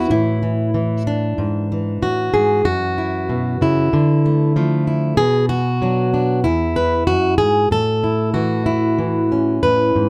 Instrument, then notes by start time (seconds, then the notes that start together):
steel-string acoustic guitar
Already playing: E3 F#4
0.10 A2 E3 E4
0.43 E3
0.74 E3
1.07 D4
1.38 G#2
1.72 E3
2.02 A2 F#4
2.34 G#2 G#4
2.65 F#2 F#4
2.98 E4
3.29 B2
3.61 C#3 E4
3.93 D3
4.26 A3
4.56 F3 A3
4.87 E4
5.17 B2 G#4
5.49 F#4
5.82 F#3 D4
6.14 D4
6.44 E2 E4
6.76 B4
7.07 F#2 F#4
7.38 G#2 G#4
7.71 A2 A4
8.04 E4
8.34 E3 F#4
8.66 E4
8.98 E3
9.32 C#4
9.63 A2 B4
9.96 G#2